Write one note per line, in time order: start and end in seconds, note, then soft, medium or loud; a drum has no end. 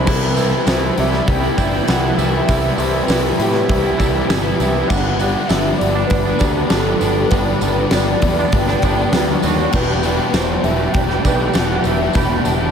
0.06 0.52 C2 medium
0.06 0.66 C3 loud
0.06 0.37 E3 loud
0.06 0.38 G3 loud
0.06 0.38 B3 medium
0.06 0.38 E4 medium
0.06 0.39 G4 loud
0.06 0.71 B4 loud
0.06 kick loud
0.06 crash loud
0.06 tambourine medium
0.37 0.67 E3 medium
0.37 0.55 G3 medium
0.37 0.67 B3 medium
0.37 0.53 E4 medium
0.37 0.51 G4 medium
0.37 open hi-hat medium
0.37 tambourine medium
0.52 0.67 G3 medium
0.52 0.67 E4 medium
0.52 0.68 G4 medium
0.67 0.89 C2 medium
0.67 1.87 C3 medium
0.67 0.97 E3 medium
0.67 0.97 G3 medium
0.67 0.82 B3 loud
0.67 0.99 E4 loud
0.67 0.99 G4 medium
0.67 1.01 C5 medium
0.67 snare loud
0.67 open hi-hat medium
0.67 tambourine loud
0.81 0.97 G3 medium
0.81 0.97 B3 medium
0.81 0.97 E4 medium
0.97 1.20 C2 medium
0.97 1.57 E3 medium
0.97 1.45 G3 medium
0.97 1.43 E4 medium
0.97 1.42 G4 medium
0.97 1.29 E5 loud
0.97 muted clean electric guitar stroke soft
0.97 open hi-hat medium
1.11 1.42 G3 medium
1.11 1.41 B3 medium
1.11 1.39 E4 medium
1.11 snare soft
1.27 1.50 C2 medium
1.27 2.18 E4 medium
1.27 1.56 G5 loud
1.27 kick loud
1.27 open hi-hat medium
1.41 1.58 G3 soft
1.41 1.57 B3 medium
1.41 1.58 E4 medium
1.41 1.60 G4 medium
1.57 1.80 G1 medium
1.57 1.88 E3 medium
1.57 1.75 G3 medium
1.57 1.72 B3 medium
1.57 1.73 E4 medium
1.57 1.73 G4 medium
1.57 1.90 G5 loud
1.57 kick medium
1.57 open hi-hat medium
1.57 tambourine medium
1.73 1.89 G3 medium
1.73 1.89 B3 medium
1.73 1.88 E4 medium
1.73 1.90 G4 medium
1.88 2.11 C2 medium
1.88 2.33 C3 medium
1.88 2.18 E3 loud
1.88 2.05 G3 medium
1.88 2.03 B3 medium
1.88 2.02 E4 loud
1.88 2.02 G4 loud
1.88 2.18 F#5 loud
1.88 snare loud
1.88 open hi-hat medium
1.88 tambourine loud
2.02 2.20 G3 medium
2.02 2.18 B3 medium
2.02 2.20 E4 medium
2.02 2.21 G4 medium
2.17 2.40 C2 medium
2.17 2.47 E3 medium
2.17 2.36 G3 medium
2.17 2.50 B3 medium
2.17 2.45 E5 loud
2.17 open hi-hat medium
2.17 tambourine medium
2.21 2.35 E4 medium
2.21 2.34 G4 medium
2.34 2.49 G3 medium
2.34 2.49 E4 medium
2.34 2.50 G4 medium
2.46 2.71 C2 medium
2.46 3.09 C3 medium
2.46 2.76 E3 medium
2.46 2.78 G3 medium
2.46 2.80 E5 loud
2.46 kick loud
2.46 open hi-hat medium
2.46 tambourine medium
2.50 2.81 B3 loud
2.50 2.78 E4 loud
2.50 2.80 G4 loud
2.78 3.00 C2 medium
2.78 3.09 E3 medium
2.78 2.95 G3 medium
2.78 2.92 E4 medium
2.78 2.93 G4 medium
2.78 3.08 C5 medium
2.78 open hi-hat medium
2.78 tambourine medium
2.82 3.11 B3 medium
2.93 3.11 G3 medium
2.93 3.10 E4 medium
2.93 3.12 G4 medium
3.07 3.31 C2 medium
3.07 3.70 C3 medium
3.07 3.38 E3 medium
3.07 4.28 B4 medium
3.07 snare loud
3.07 open hi-hat medium
3.07 tambourine loud
3.11 3.40 G3 medium
3.11 3.25 B3 loud
3.11 3.41 E4 medium
3.11 3.42 G4 medium
3.24 3.39 G3 medium
3.24 3.39 B3 medium
3.24 3.39 E4 medium
3.39 3.61 A2 medium
3.39 3.97 E3 medium
3.39 3.86 G3 medium
3.39 3.84 E4 medium
3.39 3.83 G4 medium
3.39 muted clean electric guitar stroke soft
3.39 open hi-hat medium
3.53 3.85 G3 medium
3.53 3.84 B3 medium
3.53 3.81 E4 medium
3.53 snare soft
3.69 3.91 C2 medium
3.69 4.61 E4 medium
3.69 kick loud
3.69 open hi-hat medium
3.83 3.99 G3 medium
3.83 3.97 B3 medium
3.83 3.99 E4 medium
3.83 4.00 G4 medium
3.98 4.22 C2 medium
3.98 4.28 E3 medium
3.98 4.15 G3 medium
3.98 4.14 B3 medium
3.98 4.14 E4 medium
3.98 4.13 G4 medium
3.98 kick medium
3.98 open hi-hat medium
3.98 tambourine medium
4.14 4.29 G3 medium
4.14 4.29 B3 medium
4.14 4.28 E4 medium
4.14 4.29 G4 medium
4.28 4.52 G1 medium
4.28 4.74 C3 loud
4.28 4.57 E3 loud
4.28 4.46 G3 loud
4.28 4.42 B3 loud
4.28 5.41 B3 medium
4.28 4.44 E4 loud
4.28 4.43 G4 loud
4.28 snare loud
4.28 open hi-hat medium
4.28 tambourine loud
4.42 4.59 G3 medium
4.42 4.59 B3 medium
4.42 4.59 E4 medium
4.42 4.61 G4 medium
4.59 4.82 C2 medium
4.59 4.88 E3 medium
4.59 4.77 G3 medium
4.59 4.88 B3 medium
4.59 4.74 E4 medium
4.59 4.74 G4 medium
4.59 open hi-hat medium
4.59 tambourine medium
4.75 4.92 G3 medium
4.75 4.88 E4 medium
4.75 4.93 G4 medium
4.87 5.35 G1 loud
4.87 5.51 G2 medium
4.87 5.51 D3 loud
4.87 5.19 G3 medium
4.87 5.21 B3 medium
4.87 5.50 F#5 loud
4.87 kick loud
4.87 crash loud
4.87 tambourine medium
4.92 5.21 G3 loud
4.92 5.22 B3 loud
4.92 5.22 D4 medium
4.92 5.23 G4 loud
5.19 5.37 G3 medium
5.19 5.37 B3 medium
5.19 5.36 D4 medium
5.19 open hi-hat medium
5.19 tambourine medium
5.24 5.35 G4 medium
5.36 5.52 G3 medium
5.36 5.53 B3 medium
5.36 5.53 D4 medium
5.36 5.54 G4 medium
5.48 5.72 G1 medium
5.48 6.70 G2 medium
5.48 6.11 D3 medium
5.48 5.64 D4 loud
5.48 5.77 E5 loud
5.48 snare loud
5.48 open hi-hat medium
5.48 tambourine medium
5.53 5.80 G3 medium
5.53 5.81 B3 medium
5.53 5.82 D4 loud
5.53 5.83 G4 medium
5.65 5.79 B3 medium
5.65 5.80 D4 medium
5.78 6.03 G1 medium
5.78 6.29 G3 medium
5.78 6.29 B3 medium
5.78 6.28 D4 medium
5.78 6.08 D5 medium
5.78 muted clean electric guitar stroke soft
5.78 open hi-hat medium
5.83 6.27 G4 medium
5.95 6.26 B3 medium
5.95 6.25 D4 medium
6.07 6.33 G1 medium
6.07 6.72 B4 loud
6.07 open hi-hat medium
6.11 7.02 D4 medium
6.11 kick loud
6.27 6.41 G3 medium
6.27 6.42 B3 medium
6.27 6.43 D4 medium
6.27 6.44 G4 medium
6.39 6.63 D2 medium
6.39 6.59 G3 medium
6.39 6.58 B3 medium
6.39 kick medium
6.39 open hi-hat medium
6.39 tambourine medium
6.43 6.57 D4 medium
6.43 6.56 G4 medium
6.57 6.71 G3 medium
6.57 6.72 B3 medium
6.57 6.72 D4 medium
6.57 6.73 G4 medium
6.70 6.93 G1 medium
6.70 7.16 G2 medium
6.70 7.16 D3 loud
6.70 6.88 G3 loud
6.70 6.87 B3 loud
6.70 6.86 D4 loud
6.70 6.85 G4 loud
6.70 7.31 A4 loud
6.70 snare loud
6.70 open hi-hat medium
6.70 tambourine loud
6.86 7.01 G3 medium
6.86 7.03 B3 medium
6.86 7.03 D4 medium
6.86 7.04 G4 medium
7.01 7.24 G1 medium
7.01 7.20 G3 medium
7.01 7.18 B3 medium
7.01 7.18 D4 medium
7.01 7.17 G4 loud
7.01 open hi-hat medium
7.01 tambourine medium
7.18 7.31 G3 medium
7.18 7.32 B3 medium
7.18 7.33 D4 medium
7.18 7.33 G4 medium
7.30 7.54 G1 medium
7.30 7.90 G2 loud
7.30 7.90 D3 medium
7.30 7.60 G3 medium
7.30 7.62 B3 loud
7.30 7.62 D4 loud
7.30 7.63 G4 loud
7.30 7.97 B4 loud
7.30 kick loud
7.30 open hi-hat medium
7.30 tambourine medium
7.60 7.84 G1 medium
7.60 7.79 G3 medium
7.60 7.78 B3 medium
7.60 7.77 D4 medium
7.60 7.76 G4 medium
7.60 open hi-hat medium
7.60 tambourine medium
7.76 7.92 G3 medium
7.76 7.92 B3 medium
7.76 7.93 D4 medium
7.76 7.93 G4 medium
7.91 8.14 G1 medium
7.91 8.52 G2 medium
7.91 8.52 D3 medium
7.91 8.22 G3 medium
7.91 8.24 B3 medium
7.91 8.25 D4 medium
7.91 8.25 G4 loud
7.91 snare loud
7.91 open hi-hat medium
7.91 tambourine loud
7.95 8.59 D5 loud
8.08 8.22 B3 medium
8.08 8.22 D4 medium
8.22 8.45 E2 medium
8.22 8.70 G3 medium
8.22 8.69 B3 medium
8.22 8.68 D4 medium
8.22 8.67 G4 medium
8.22 muted clean electric guitar stroke soft
8.22 kick medium
8.22 open hi-hat medium
8.22 tambourine soft
8.39 8.69 B3 medium
8.39 8.68 D4 medium
8.52 8.75 G1 medium
8.52 9.44 D4 medium
8.52 kick loud
8.52 open hi-hat medium
8.52 tambourine soft
8.58 9.46 G5 loud
8.67 8.82 G3 medium
8.67 8.83 B3 medium
8.67 8.84 D4 medium
8.67 8.85 G4 medium
8.67 snare soft
8.82 9.05 G1 medium
8.82 9.01 G3 medium
8.82 9.00 B3 medium
8.82 8.99 D4 medium
8.82 8.99 G4 medium
8.82 kick medium
8.82 open hi-hat medium
8.82 tambourine medium
8.99 9.13 G3 medium
8.99 9.13 B3 medium
8.99 9.13 D4 medium
8.99 9.13 G4 medium
9.12 9.35 D2 medium
9.12 9.58 G2 medium
9.12 9.58 D3 loud
9.12 9.29 G3 medium
9.12 9.29 B3 medium
9.12 9.27 D4 medium
9.12 9.26 G4 loud
9.12 snare loud
9.12 open hi-hat medium
9.12 tambourine medium
9.26 9.42 G3 medium
9.26 9.43 B3 medium
9.26 9.44 D4 medium
9.26 9.45 G4 medium
9.42 9.66 D#2 medium
9.42 9.59 G3 medium
9.42 9.59 B3 medium
9.42 9.57 D4 medium
9.42 9.73 F#4 medium
9.42 9.56 G4 medium
9.42 open hi-hat medium
9.42 tambourine medium
9.57 9.72 G3 medium
9.57 9.73 B3 medium
9.57 9.73 D4 medium
9.57 9.73 G4 medium
9.71 10.18 E1 loud
9.71 10.31 E2 medium
9.71 10.31 B2 loud
9.71 9.99 E3 medium
9.71 10.01 G3 loud
9.71 10.02 B3 medium
9.71 10.02 G4 loud
9.71 10.37 B4 loud
9.71 kick loud
9.71 crash medium
9.71 tambourine medium
9.76 10.05 D4 loud
10.00 10.18 E3 medium
10.00 10.17 G3 medium
10.00 10.16 B3 medium
10.00 10.16 G4 medium
10.00 open hi-hat medium
10.00 tambourine medium
10.04 10.35 E3 medium
10.04 10.35 G3 medium
10.04 10.35 D4 medium
10.16 10.32 E3 medium
10.16 10.33 G3 medium
10.16 10.33 B3 medium
10.16 10.33 G4 medium
10.32 10.56 E1 medium
10.32 11.54 E2 medium
10.32 10.94 B2 medium
10.32 10.62 E3 medium
10.32 10.63 G3 medium
10.32 10.63 B3 loud
10.32 10.50 D4 loud
10.32 10.64 G4 medium
10.32 10.65 C5 medium
10.32 snare loud
10.32 open hi-hat medium
10.32 tambourine loud
10.36 10.95 D4 medium
10.50 10.64 E3 medium
10.50 10.65 G3 medium
10.50 10.65 D4 medium
10.50 10.65 G4 medium
10.62 10.86 E1 medium
10.62 11.09 E3 medium
10.62 11.09 G3 medium
10.62 11.07 B3 medium
10.62 11.08 G4 medium
10.62 10.94 E5 loud
10.62 muted clean electric guitar stroke soft
10.62 open hi-hat medium
10.79 11.09 E3 medium
10.79 11.09 G3 medium
10.79 11.08 D4 medium
10.79 11.08 G4 medium
10.92 11.17 E1 medium
10.92 11.86 D4 medium
10.92 11.22 G5 loud
10.92 kick loud
10.92 open hi-hat medium
11.08 11.23 E3 medium
11.08 11.25 G3 medium
11.08 11.25 B3 medium
11.08 11.24 D4 medium
11.08 11.26 G4 medium
11.08 snare soft
11.22 11.47 B1 medium
11.22 11.40 E3 medium
11.22 11.40 G3 medium
11.22 11.39 B3 medium
11.22 11.38 D4 medium
11.22 11.57 G5 loud
11.22 kick medium
11.22 open hi-hat medium
11.22 tambourine medium
11.27 11.38 G4 medium
11.38 11.54 E3 medium
11.38 11.56 G3 medium
11.38 11.55 B3 medium
11.38 11.54 D4 medium
11.38 11.57 G4 medium
11.53 11.77 E1 medium
11.53 12.00 E2 loud
11.53 12.01 B2 loud
11.53 11.70 E3 loud
11.53 11.70 G3 medium
11.53 11.68 B3 loud
11.53 11.70 D4 loud
11.53 11.68 G4 loud
11.53 11.88 F#5 loud
11.53 snare loud
11.53 open hi-hat medium
11.53 tambourine medium
11.69 11.84 E3 medium
11.69 11.86 G3 medium
11.69 11.85 B3 medium
11.69 11.84 D4 medium
11.69 11.87 G4 medium
11.84 12.07 E1 medium
11.84 12.02 E3 medium
11.84 12.02 G3 medium
11.84 12.01 B3 medium
11.84 12.17 D4 medium
11.84 12.71 D4 medium
11.84 12.00 G4 medium
11.84 12.17 E5 loud
11.84 open hi-hat medium
11.84 tambourine medium
12.01 12.14 E3 medium
12.01 12.15 G3 medium
12.01 12.15 B3 medium
12.01 12.16 G4 medium
12.13 12.38 E1 loud
12.13 12.71 E2 medium
12.13 12.71 B2 loud
12.13 12.44 E3 loud
12.13 12.45 G3 loud
12.13 12.45 B3 loud
12.13 12.47 G4 loud
12.13 12.47 B5 loud
12.13 kick loud
12.13 open hi-hat medium
12.13 tambourine medium
12.18 12.46 D4 loud
12.45 12.68 E1 medium
12.45 12.62 E3 medium
12.45 12.61 G3 medium
12.45 12.60 B3 medium
12.45 12.71 D4 medium
12.45 12.59 G4 medium
12.45 12.71 A5 loud
12.45 open hi-hat medium
12.45 tambourine medium
12.60 12.71 E3 medium
12.60 12.71 G3 medium
12.60 12.71 B3 medium
12.60 12.71 G4 medium